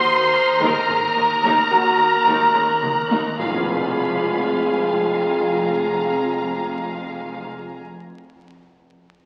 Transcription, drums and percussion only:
0.34 taiko rim
0.61 taiko
0.89 taiko low-mid
1.44 taiko
2.27 taiko
2.55 taiko rim
2.83 taiko mid
3.11 taiko high
3.39 taiko, tam-tam

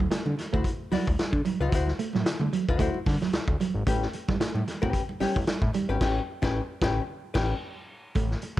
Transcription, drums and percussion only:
0.00 kick
0.11 snare, closed hi-hat
0.26 muted conga, high conga
0.38 snare, closed hi-hat, low conga
0.54 kick
0.64 kick, closed hi-hat, muted conga
0.92 snare, open hi-hat, high conga
1.07 kick
1.19 snare, closed hi-hat, high conga
1.33 kick
1.45 closed hi-hat, high conga, low conga
1.72 kick, closed hi-hat, low conga
1.87 snare, muted conga
1.99 closed hi-hat
2.13 snare, high conga
2.26 snare, closed hi-hat
2.41 muted conga, high conga
2.53 closed hi-hat, low conga
2.69 kick
2.79 kick, closed hi-hat
2.94 muted conga
3.06 kick, snare, open hi-hat, high conga
3.21 snare
3.33 snare, closed hi-hat, high conga
3.48 kick, muted conga
3.60 closed hi-hat, high conga, low conga
3.87 kick, closed hi-hat, muted conga, low conga
4.02 snare
4.13 closed hi-hat
4.28 kick, snare, high conga
4.41 snare, closed hi-hat
4.56 muted conga, high conga
4.67 snare, closed hi-hat, low conga
4.83 kick
4.93 kick, closed hi-hat, muted conga
5.09 muted conga
5.20 snare, open hi-hat, high conga
5.36 kick
5.47 snare, closed hi-hat, muted conga, high conga
5.62 kick
5.74 closed hi-hat, high conga, low conga
6.01 kick, snare, crash
6.43 kick, snare
6.82 kick, snare
7.35 kick, snare, crash
8.15 kick, closed hi-hat, muted conga, low conga
8.31 snare
8.42 closed hi-hat

